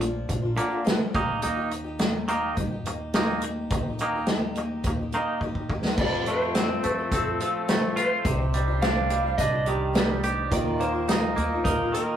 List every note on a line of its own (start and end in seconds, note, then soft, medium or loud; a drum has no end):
0.00 0.26 A#1 medium
0.00 0.27 A#2 medium
0.00 0.27 D3 medium
0.00 0.44 F3 medium
0.00 0.44 A#3 medium
0.00 0.44 D4 medium
0.00 0.41 F4 medium
0.00 closed hi-hat medium
0.29 0.56 A#1 medium
0.29 0.55 A#2 medium
0.29 0.56 D3 medium
0.29 kick medium
0.29 closed hi-hat medium
0.42 0.56 A#3 soft
0.42 0.56 D4 soft
0.42 0.57 F4 medium
0.56 0.84 A#2 loud
0.56 0.85 D3 medium
0.56 0.71 F3 medium
0.56 0.72 A#3 medium
0.56 0.71 D4 medium
0.56 0.69 F4 medium
0.56 closed hi-hat medium
0.70 0.84 A#3 soft
0.70 0.84 D4 soft
0.70 0.85 F4 medium
0.84 1.14 A#2 medium
0.84 1.12 D3 medium
0.84 1.12 F3 medium
0.84 1.13 A#3 medium
0.84 1.15 D4 medium
0.84 1.15 F4 medium
0.84 snare loud
0.84 closed hi-hat medium
1.13 1.42 D#2 medium
1.13 1.41 D#3 medium
1.13 1.41 A#3 medium
1.13 1.42 D#4 medium
1.13 1.42 G4 medium
1.13 kick loud
1.13 closed hi-hat medium
1.42 2.53 D#2 medium
1.42 1.57 D#3 medium
1.42 1.57 A#3 medium
1.42 1.57 D#4 medium
1.42 1.55 G4 medium
1.42 closed hi-hat medium
1.56 1.87 A#3 soft
1.56 1.85 D#4 soft
1.56 1.83 G4 medium
1.71 1.97 D#3 medium
1.71 1.98 A#3 medium
1.71 closed hi-hat soft
1.84 1.99 A#3 soft
1.84 2.00 D#4 medium
1.84 1.99 G4 medium
1.99 2.27 D#3 medium
1.99 2.27 A#3 medium
1.99 2.29 D#4 medium
1.99 2.29 G4 medium
1.99 snare loud
1.99 closed hi-hat medium
2.28 2.55 D#3 medium
2.28 2.56 A#3 medium
2.28 2.58 D#4 medium
2.28 2.58 G4 medium
2.28 closed hi-hat medium
2.56 2.86 G2 medium
2.56 2.71 D#3 medium
2.56 2.71 A#3 soft
2.56 2.71 D#4 soft
2.56 2.70 G4 medium
2.56 kick medium
2.56 closed hi-hat medium
2.71 2.87 A#3 soft
2.71 2.86 D#4 medium
2.71 2.85 G4 soft
2.85 3.67 D#2 medium
2.85 3.14 D#3 medium
2.85 3.15 A#3 medium
2.85 closed hi-hat medium
2.90 3.15 D#4 medium
2.90 3.16 G4 medium
3.14 3.42 D#3 medium
3.14 3.44 A#3 medium
3.14 3.44 D#4 medium
3.14 snare loud
3.14 closed hi-hat medium
3.18 3.44 G4 medium
3.42 3.71 D#3 medium
3.42 3.72 A#3 medium
3.42 closed hi-hat medium
3.46 3.73 D#4 medium
3.46 3.73 G4 medium
3.71 4.80 D#2 medium
3.71 3.86 D#3 medium
3.71 3.86 A#3 medium
3.71 kick loud
3.71 closed hi-hat medium
3.75 3.87 D#4 medium
3.75 3.87 G4 medium
3.88 4.17 A#3 soft
3.88 4.16 D#4 soft
3.88 4.14 G4 soft
3.99 4.27 D#3 medium
3.99 4.27 A#3 loud
3.99 4.27 D#4 medium
3.99 closed hi-hat medium
4.15 4.28 A#3 soft
4.15 4.29 D#4 soft
4.15 4.28 G4 medium
4.26 4.55 D#3 medium
4.26 4.56 A#3 medium
4.26 4.57 D#4 medium
4.26 snare medium
4.26 closed hi-hat medium
4.31 4.58 G4 medium
4.55 4.85 D#3 medium
4.55 4.85 A#3 medium
4.55 4.86 D#4 medium
4.55 closed hi-hat medium
4.60 4.86 G4 medium
4.84 5.11 D#2 medium
4.84 4.99 D#3 soft
4.84 5.00 A#3 soft
4.84 kick medium
4.84 closed hi-hat medium
4.88 5.00 D#4 soft
4.88 4.98 G4 medium
4.99 5.12 A#3 soft
4.99 5.14 D#4 soft
4.99 5.13 G4 soft
5.12 5.40 D#3 medium
5.12 5.42 A#3 medium
5.12 5.42 D#4 medium
5.12 5.42 G4 medium
5.12 closed hi-hat soft
5.41 5.68 D#3 medium
5.41 5.69 A#3 medium
5.41 5.70 D#4 medium
5.41 5.71 G4 medium
5.41 kick medium
5.55 kick soft
5.70 5.96 D#2 medium
5.70 5.98 D#3 medium
5.70 5.98 A#3 medium
5.70 5.99 D#4 medium
5.70 6.00 G4 medium
5.70 kick medium
5.84 snare medium
5.98 6.79 F2 medium
5.98 6.12 F2 medium
5.98 6.13 C3 medium
5.98 6.13 F3 medium
5.98 6.13 A3 medium
5.98 6.13 C4 medium
5.98 6.12 A4 medium
5.98 6.26 D5 medium
5.98 kick loud
5.98 crash loud
6.13 6.27 F3 soft
6.13 6.28 A3 soft
6.13 6.27 C4 soft
6.13 6.27 A4 soft
6.26 6.41 F3 soft
6.26 6.42 A3 medium
6.26 6.91 C5 medium
6.26 closed hi-hat medium
6.31 6.41 C4 medium
6.31 6.40 A4 soft
6.42 6.55 F3 soft
6.42 6.55 A3 soft
6.42 6.55 C4 soft
6.42 6.55 A4 soft
6.55 6.83 F2 medium
6.55 6.83 C3 medium
6.55 6.83 F3 medium
6.55 6.84 A3 medium
6.55 6.84 C4 medium
6.55 6.84 A4 medium
6.55 snare loud
6.55 closed hi-hat medium
6.84 7.10 F2 medium
6.84 6.98 F3 medium
6.84 6.98 A3 medium
6.84 6.97 C4 medium
6.84 6.97 A4 medium
6.84 closed hi-hat medium
6.91 7.16 A#4 medium
6.98 7.26 F3 soft
6.98 7.26 A3 soft
6.98 7.25 C4 soft
6.98 7.23 A4 soft
7.12 7.38 F2 loud
7.12 8.25 C4 medium
7.12 7.40 A4 medium
7.12 kick medium
7.12 closed hi-hat medium
7.24 7.39 F3 soft
7.24 7.40 A3 soft
7.24 7.40 C4 soft
7.24 7.39 A4 soft
7.40 7.69 F3 medium
7.40 7.69 A3 medium
7.40 7.70 C4 medium
7.40 7.99 A4 medium
7.40 7.70 A4 medium
7.40 closed hi-hat medium
7.68 7.83 F2 medium
7.68 7.83 C3 medium
7.68 7.83 F3 medium
7.68 7.84 A3 medium
7.68 7.83 C4 medium
7.68 7.82 A4 medium
7.68 snare loud
7.68 closed hi-hat medium
7.83 7.97 F3 soft
7.83 7.98 A3 soft
7.83 7.98 C4 soft
7.83 7.97 A4 medium
7.96 8.26 F3 medium
7.96 8.27 A3 medium
7.96 8.27 C4 medium
7.96 8.25 F4 medium
7.96 8.85 C5 loud
7.96 closed hi-hat medium
8.01 8.27 A4 medium
8.25 9.35 C2 loud
8.25 8.40 C3 medium
8.25 8.40 D#3 medium
8.25 8.41 C4 medium
8.25 8.41 D4 medium
8.25 kick loud
8.25 closed hi-hat medium
8.29 8.39 G4 medium
8.40 8.54 C4 soft
8.40 8.54 D4 soft
8.40 8.54 G4 soft
8.53 8.68 D#3 soft
8.53 9.09 G3 medium
8.53 8.68 C4 medium
8.53 8.68 D4 medium
8.53 8.67 G4 medium
8.53 closed hi-hat medium
8.68 8.82 C4 soft
8.68 8.82 D4 soft
8.68 8.82 G4 medium
8.82 9.10 C3 medium
8.82 9.09 D#3 medium
8.82 9.10 C4 medium
8.82 9.11 D4 medium
8.82 9.12 G4 medium
8.82 9.37 F5 loud
8.82 snare loud
8.82 closed hi-hat medium
9.10 9.24 D#3 medium
9.10 9.96 G3 medium
9.10 9.25 C4 medium
9.10 9.25 D4 medium
9.10 9.23 G4 medium
9.10 closed hi-hat medium
9.24 9.54 C4 soft
9.24 9.53 D4 soft
9.24 9.52 G4 medium
9.38 10.48 C2 medium
9.38 10.53 D4 medium
9.38 9.67 D#5 loud
9.38 kick medium
9.38 closed hi-hat loud
9.53 9.67 C4 soft
9.53 9.67 D4 soft
9.53 9.67 G4 soft
9.66 9.93 D#3 medium
9.66 9.94 C4 medium
9.66 9.93 D4 medium
9.66 10.20 G4 medium
9.66 9.94 G4 medium
9.66 closed hi-hat medium
9.93 10.09 C3 medium
9.93 10.09 D#3 medium
9.93 10.53 G3 medium
9.93 10.09 C4 medium
9.93 10.09 D4 medium
9.93 10.08 G4 medium
9.93 snare loud
9.93 closed hi-hat medium
10.09 10.23 C4 soft
10.09 10.24 D4 soft
10.09 10.23 G4 soft
10.23 10.50 D#3 medium
10.23 10.51 C4 medium
10.23 10.52 D4 medium
10.23 10.53 G4 medium
10.23 closed hi-hat medium
10.50 11.33 D#2 medium
10.50 10.66 D#3 medium
10.50 12.17 A#3 medium
10.50 10.66 A#3 medium
10.50 11.44 D#4 medium
10.50 12.17 D#4 medium
10.50 10.66 D#4 medium
10.50 11.45 F4 medium
10.50 12.17 F4 medium
10.50 10.63 F4 medium
10.50 11.45 A#4 medium
10.50 12.17 A#4 medium
10.50 10.82 D5 loud
10.50 kick loud
10.50 closed hi-hat loud
10.64 10.79 A#3 soft
10.64 10.80 D#4 soft
10.64 10.80 F4 medium
10.78 10.93 D#3 medium
10.78 10.94 A#3 medium
10.78 10.93 D#4 medium
10.78 10.92 F4 medium
10.78 11.65 C5 medium
10.78 closed hi-hat soft
10.93 11.08 A#3 soft
10.93 11.09 D#4 soft
10.93 11.08 F4 medium
11.08 11.35 D#3 medium
11.08 11.36 A#3 medium
11.08 11.37 D#4 medium
11.08 11.38 F4 medium
11.08 snare loud
11.08 closed hi-hat medium
11.08 tambourine medium
11.36 11.64 D#2 medium
11.36 11.51 D#3 medium
11.36 11.51 A#3 medium
11.36 11.52 D#4 medium
11.36 11.51 F4 medium
11.36 closed hi-hat medium
11.52 11.82 A#3 soft
11.52 11.81 D#4 soft
11.52 11.79 F4 medium
11.64 11.92 D#2 loud
11.64 12.17 D#4 medium
11.64 11.93 A#4 loud
11.64 kick medium
11.64 closed hi-hat medium
11.80 11.94 A#3 soft
11.80 11.95 D#4 soft
11.80 11.94 F4 soft
11.94 12.17 D#3 medium
11.94 12.17 A#3 medium
11.94 12.17 D#4 medium
11.94 12.17 F4 medium
11.94 12.17 A#4 medium
11.94 closed hi-hat medium